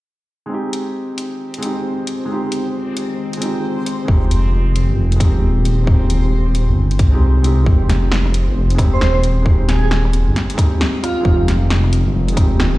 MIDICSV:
0, 0, Header, 1, 7, 480
1, 0, Start_track
1, 0, Key_signature, -4, "minor"
1, 0, Tempo, 447761
1, 541, Time_signature, 4, 2, 24, 8
1, 13702, End_track
2, 0, Start_track
2, 0, Title_t, "Digital synth lead"
2, 0, Program_c, 0, 84
2, 9572, Note_on_c, 0, 72, 92
2, 9820, Note_off_c, 0, 72, 0
2, 10379, Note_on_c, 0, 68, 80
2, 10474, Note_off_c, 0, 68, 0
2, 10530, Note_on_c, 0, 68, 76
2, 10589, Note_off_c, 0, 68, 0
2, 11816, Note_on_c, 0, 65, 84
2, 12299, Note_off_c, 0, 65, 0
2, 13702, End_track
3, 0, Start_track
3, 0, Title_t, "Synth texture"
3, 0, Program_c, 1, 99
3, 536, Note_on_c, 1, 72, 71
3, 539, Note_on_c, 1, 60, 73
3, 8231, Note_off_c, 1, 72, 0
3, 8232, Note_off_c, 1, 60, 0
3, 13702, End_track
4, 0, Start_track
4, 0, Title_t, "Felt piano"
4, 0, Program_c, 2, 0
4, 492, Note_on_c, 2, 56, 69
4, 521, Note_on_c, 2, 60, 61
4, 550, Note_on_c, 2, 63, 64
4, 578, Note_on_c, 2, 67, 79
4, 737, Control_c, 2, 64, 127
4, 1679, Note_off_c, 2, 56, 0
4, 1695, Note_on_c, 2, 56, 69
4, 1705, Note_off_c, 2, 60, 0
4, 1721, Note_on_c, 2, 60, 64
4, 1723, Note_off_c, 2, 63, 0
4, 1737, Note_off_c, 2, 67, 0
4, 1748, Note_on_c, 2, 63, 62
4, 1779, Note_on_c, 2, 67, 76
4, 2398, Note_off_c, 2, 56, 0
4, 2414, Note_on_c, 2, 56, 73
4, 2429, Note_off_c, 2, 60, 0
4, 2443, Note_off_c, 2, 63, 0
4, 2445, Note_on_c, 2, 60, 63
4, 2458, Note_off_c, 2, 67, 0
4, 2475, Note_on_c, 2, 63, 63
4, 2502, Note_on_c, 2, 67, 79
4, 3599, Note_off_c, 2, 56, 0
4, 3615, Note_on_c, 2, 56, 70
4, 3629, Note_off_c, 2, 60, 0
4, 3645, Note_on_c, 2, 60, 64
4, 3646, Note_off_c, 2, 63, 0
4, 3660, Note_off_c, 2, 67, 0
4, 3671, Note_on_c, 2, 63, 64
4, 3702, Note_on_c, 2, 67, 74
4, 4322, Note_off_c, 2, 56, 0
4, 4338, Note_on_c, 2, 56, 71
4, 4351, Note_off_c, 2, 60, 0
4, 4364, Note_off_c, 2, 63, 0
4, 4367, Note_on_c, 2, 60, 66
4, 4380, Note_off_c, 2, 67, 0
4, 4396, Note_on_c, 2, 63, 67
4, 4425, Note_on_c, 2, 67, 79
4, 5517, Note_off_c, 2, 56, 0
4, 5533, Note_on_c, 2, 56, 73
4, 5548, Note_off_c, 2, 60, 0
4, 5564, Note_on_c, 2, 60, 66
4, 5567, Note_off_c, 2, 63, 0
4, 5581, Note_off_c, 2, 67, 0
4, 5592, Note_on_c, 2, 63, 67
4, 5621, Note_on_c, 2, 67, 78
4, 6243, Note_off_c, 2, 56, 0
4, 6259, Note_on_c, 2, 56, 71
4, 6267, Note_off_c, 2, 60, 0
4, 6283, Note_on_c, 2, 60, 68
4, 6285, Note_off_c, 2, 63, 0
4, 6299, Note_off_c, 2, 67, 0
4, 6313, Note_on_c, 2, 63, 64
4, 6340, Note_on_c, 2, 67, 80
4, 7458, Note_off_c, 2, 56, 0
4, 7470, Note_off_c, 2, 60, 0
4, 7485, Note_off_c, 2, 63, 0
4, 7498, Note_off_c, 2, 67, 0
4, 7622, Note_on_c, 2, 56, 77
4, 7637, Note_on_c, 2, 60, 70
4, 7651, Note_on_c, 2, 63, 70
4, 7661, Note_on_c, 2, 67, 85
4, 7937, Note_off_c, 2, 56, 0
4, 7953, Note_on_c, 2, 56, 80
4, 7954, Note_off_c, 2, 60, 0
4, 7961, Note_off_c, 2, 63, 0
4, 7966, Note_off_c, 2, 67, 0
4, 7971, Note_on_c, 2, 60, 76
4, 7981, Note_on_c, 2, 63, 74
4, 7995, Note_on_c, 2, 67, 87
4, 8154, Note_off_c, 2, 56, 0
4, 8170, Note_on_c, 2, 56, 73
4, 8182, Note_off_c, 2, 60, 0
4, 8198, Note_on_c, 2, 60, 69
4, 8199, Note_off_c, 2, 63, 0
4, 8206, Note_off_c, 2, 67, 0
4, 8226, Note_on_c, 2, 63, 64
4, 8238, Control_c, 2, 64, 0
4, 8253, Note_on_c, 2, 67, 82
4, 8431, Control_c, 2, 64, 127
4, 9360, Note_off_c, 2, 56, 0
4, 9376, Note_on_c, 2, 56, 73
4, 9388, Note_off_c, 2, 60, 0
4, 9402, Note_off_c, 2, 63, 0
4, 9407, Note_on_c, 2, 60, 67
4, 9415, Note_off_c, 2, 67, 0
4, 9435, Note_on_c, 2, 63, 68
4, 9461, Note_on_c, 2, 67, 82
4, 10083, Note_off_c, 2, 56, 0
4, 10099, Note_on_c, 2, 56, 75
4, 10112, Note_off_c, 2, 60, 0
4, 10126, Note_off_c, 2, 63, 0
4, 10128, Note_on_c, 2, 60, 69
4, 10139, Note_off_c, 2, 67, 0
4, 10158, Note_on_c, 2, 63, 66
4, 10188, Note_on_c, 2, 67, 81
4, 11285, Note_off_c, 2, 56, 0
4, 11301, Note_on_c, 2, 56, 73
4, 11309, Note_off_c, 2, 60, 0
4, 11326, Note_on_c, 2, 60, 67
4, 11327, Note_off_c, 2, 63, 0
4, 11342, Note_off_c, 2, 67, 0
4, 11354, Note_on_c, 2, 63, 67
4, 11386, Note_on_c, 2, 67, 80
4, 11995, Note_off_c, 2, 56, 0
4, 12011, Note_on_c, 2, 56, 74
4, 12023, Note_off_c, 2, 60, 0
4, 12039, Note_on_c, 2, 60, 72
4, 12045, Note_off_c, 2, 63, 0
4, 12062, Note_off_c, 2, 67, 0
4, 12071, Note_on_c, 2, 63, 70
4, 12097, Note_on_c, 2, 67, 79
4, 13201, Note_off_c, 2, 56, 0
4, 13217, Note_on_c, 2, 56, 75
4, 13227, Note_off_c, 2, 60, 0
4, 13243, Note_on_c, 2, 60, 65
4, 13244, Note_off_c, 2, 63, 0
4, 13257, Note_off_c, 2, 67, 0
4, 13273, Note_on_c, 2, 63, 70
4, 13302, Note_on_c, 2, 67, 82
4, 13702, Note_off_c, 2, 56, 0
4, 13702, Note_off_c, 2, 60, 0
4, 13702, Note_off_c, 2, 63, 0
4, 13702, Note_off_c, 2, 67, 0
4, 13702, End_track
5, 0, Start_track
5, 0, Title_t, "Ambient pad"
5, 0, Program_c, 3, 92
5, 538, Note_on_c, 3, 51, 76
5, 760, Note_on_c, 3, 56, 67
5, 936, Note_on_c, 3, 65, 69
5, 1490, Note_on_c, 3, 67, 72
5, 8220, Note_off_c, 3, 51, 0
5, 8220, Note_off_c, 3, 56, 0
5, 8220, Note_off_c, 3, 67, 0
5, 8223, Note_off_c, 3, 65, 0
5, 12057, Note_on_c, 3, 51, 75
5, 12246, Note_on_c, 3, 65, 74
5, 12617, Note_on_c, 3, 56, 72
5, 13139, Note_on_c, 3, 67, 78
5, 13702, Note_off_c, 3, 51, 0
5, 13702, Note_off_c, 3, 56, 0
5, 13702, Note_off_c, 3, 65, 0
5, 13702, Note_off_c, 3, 67, 0
5, 13702, End_track
6, 0, Start_track
6, 0, Title_t, "Detuned saw bass"
6, 0, Program_c, 4, 39
6, 4377, Note_on_c, 4, 29, 92
6, 5227, Note_off_c, 4, 29, 0
6, 5244, Note_on_c, 4, 31, 78
6, 5332, Note_off_c, 4, 31, 0
6, 5341, Note_on_c, 4, 29, 84
6, 5824, Note_on_c, 4, 27, 79
6, 5840, Note_off_c, 4, 29, 0
6, 7151, Note_off_c, 4, 27, 0
6, 7171, Note_on_c, 4, 31, 78
6, 7496, Note_on_c, 4, 36, 99
6, 7512, Note_off_c, 4, 31, 0
6, 8207, Note_off_c, 4, 36, 0
6, 8216, Note_on_c, 4, 29, 92
6, 9067, Note_off_c, 4, 29, 0
6, 9084, Note_on_c, 4, 31, 77
6, 9170, Note_off_c, 4, 31, 0
6, 9176, Note_on_c, 4, 29, 86
6, 9659, Note_on_c, 4, 27, 77
6, 9675, Note_off_c, 4, 29, 0
6, 10988, Note_off_c, 4, 27, 0
6, 11012, Note_on_c, 4, 31, 79
6, 11096, Note_off_c, 4, 31, 0
6, 12058, Note_on_c, 4, 29, 91
6, 12908, Note_off_c, 4, 29, 0
6, 12934, Note_on_c, 4, 31, 79
6, 13017, Note_off_c, 4, 31, 0
6, 13023, Note_on_c, 4, 29, 85
6, 13502, Note_on_c, 4, 27, 81
6, 13518, Note_off_c, 4, 29, 0
6, 13702, Note_off_c, 4, 27, 0
6, 13702, End_track
7, 0, Start_track
7, 0, Title_t, "Drums"
7, 784, Note_on_c, 9, 42, 51
7, 891, Note_off_c, 9, 42, 0
7, 1263, Note_on_c, 9, 42, 50
7, 1370, Note_off_c, 9, 42, 0
7, 1650, Note_on_c, 9, 42, 29
7, 1742, Note_off_c, 9, 42, 0
7, 1742, Note_on_c, 9, 42, 55
7, 1850, Note_off_c, 9, 42, 0
7, 2221, Note_on_c, 9, 42, 49
7, 2329, Note_off_c, 9, 42, 0
7, 2700, Note_on_c, 9, 42, 51
7, 2807, Note_off_c, 9, 42, 0
7, 3180, Note_on_c, 9, 42, 52
7, 3287, Note_off_c, 9, 42, 0
7, 3573, Note_on_c, 9, 42, 29
7, 3663, Note_off_c, 9, 42, 0
7, 3663, Note_on_c, 9, 42, 55
7, 3770, Note_off_c, 9, 42, 0
7, 4143, Note_on_c, 9, 42, 49
7, 4250, Note_off_c, 9, 42, 0
7, 4377, Note_on_c, 9, 36, 106
7, 4484, Note_off_c, 9, 36, 0
7, 4622, Note_on_c, 9, 42, 51
7, 4729, Note_off_c, 9, 42, 0
7, 5099, Note_on_c, 9, 42, 50
7, 5206, Note_off_c, 9, 42, 0
7, 5489, Note_on_c, 9, 42, 28
7, 5577, Note_on_c, 9, 36, 105
7, 5580, Note_off_c, 9, 42, 0
7, 5580, Note_on_c, 9, 42, 54
7, 5684, Note_off_c, 9, 36, 0
7, 5688, Note_off_c, 9, 42, 0
7, 6060, Note_on_c, 9, 42, 51
7, 6167, Note_off_c, 9, 42, 0
7, 6296, Note_on_c, 9, 36, 106
7, 6403, Note_off_c, 9, 36, 0
7, 6539, Note_on_c, 9, 42, 51
7, 6646, Note_off_c, 9, 42, 0
7, 7020, Note_on_c, 9, 42, 50
7, 7127, Note_off_c, 9, 42, 0
7, 7408, Note_on_c, 9, 42, 27
7, 7496, Note_off_c, 9, 42, 0
7, 7496, Note_on_c, 9, 36, 104
7, 7496, Note_on_c, 9, 42, 51
7, 7603, Note_off_c, 9, 42, 0
7, 7604, Note_off_c, 9, 36, 0
7, 7980, Note_on_c, 9, 42, 46
7, 8087, Note_off_c, 9, 42, 0
7, 8216, Note_on_c, 9, 36, 105
7, 8323, Note_off_c, 9, 36, 0
7, 8464, Note_on_c, 9, 38, 57
7, 8464, Note_on_c, 9, 42, 54
7, 8571, Note_off_c, 9, 38, 0
7, 8571, Note_off_c, 9, 42, 0
7, 8700, Note_on_c, 9, 38, 102
7, 8807, Note_off_c, 9, 38, 0
7, 8850, Note_on_c, 9, 37, 35
7, 8942, Note_on_c, 9, 42, 53
7, 8957, Note_off_c, 9, 37, 0
7, 9050, Note_off_c, 9, 42, 0
7, 9331, Note_on_c, 9, 42, 30
7, 9417, Note_on_c, 9, 36, 96
7, 9421, Note_off_c, 9, 42, 0
7, 9421, Note_on_c, 9, 37, 67
7, 9421, Note_on_c, 9, 42, 56
7, 9524, Note_off_c, 9, 36, 0
7, 9529, Note_off_c, 9, 37, 0
7, 9529, Note_off_c, 9, 42, 0
7, 9662, Note_on_c, 9, 38, 99
7, 9769, Note_off_c, 9, 38, 0
7, 9900, Note_on_c, 9, 42, 53
7, 10007, Note_off_c, 9, 42, 0
7, 10138, Note_on_c, 9, 36, 110
7, 10245, Note_off_c, 9, 36, 0
7, 10384, Note_on_c, 9, 38, 58
7, 10384, Note_on_c, 9, 42, 56
7, 10491, Note_off_c, 9, 38, 0
7, 10491, Note_off_c, 9, 42, 0
7, 10624, Note_on_c, 9, 38, 100
7, 10731, Note_off_c, 9, 38, 0
7, 10774, Note_on_c, 9, 37, 32
7, 10864, Note_on_c, 9, 42, 55
7, 10882, Note_off_c, 9, 37, 0
7, 10971, Note_off_c, 9, 42, 0
7, 11108, Note_on_c, 9, 38, 61
7, 11108, Note_on_c, 9, 42, 31
7, 11215, Note_off_c, 9, 38, 0
7, 11215, Note_off_c, 9, 42, 0
7, 11254, Note_on_c, 9, 42, 30
7, 11340, Note_on_c, 9, 36, 104
7, 11349, Note_off_c, 9, 42, 0
7, 11349, Note_on_c, 9, 37, 65
7, 11349, Note_on_c, 9, 42, 58
7, 11447, Note_off_c, 9, 36, 0
7, 11456, Note_off_c, 9, 37, 0
7, 11456, Note_off_c, 9, 42, 0
7, 11587, Note_on_c, 9, 38, 103
7, 11694, Note_off_c, 9, 38, 0
7, 11831, Note_on_c, 9, 37, 54
7, 11831, Note_on_c, 9, 42, 53
7, 11939, Note_off_c, 9, 37, 0
7, 11939, Note_off_c, 9, 42, 0
7, 12060, Note_on_c, 9, 36, 111
7, 12167, Note_off_c, 9, 36, 0
7, 12309, Note_on_c, 9, 38, 62
7, 12309, Note_on_c, 9, 42, 55
7, 12416, Note_off_c, 9, 38, 0
7, 12416, Note_off_c, 9, 42, 0
7, 12547, Note_on_c, 9, 38, 105
7, 12654, Note_off_c, 9, 38, 0
7, 12691, Note_on_c, 9, 37, 32
7, 12786, Note_on_c, 9, 42, 54
7, 12798, Note_off_c, 9, 37, 0
7, 12893, Note_off_c, 9, 42, 0
7, 13169, Note_on_c, 9, 42, 30
7, 13259, Note_on_c, 9, 36, 111
7, 13262, Note_off_c, 9, 42, 0
7, 13262, Note_on_c, 9, 37, 61
7, 13262, Note_on_c, 9, 42, 57
7, 13366, Note_off_c, 9, 36, 0
7, 13369, Note_off_c, 9, 37, 0
7, 13369, Note_off_c, 9, 42, 0
7, 13503, Note_on_c, 9, 38, 104
7, 13611, Note_off_c, 9, 38, 0
7, 13702, End_track
0, 0, End_of_file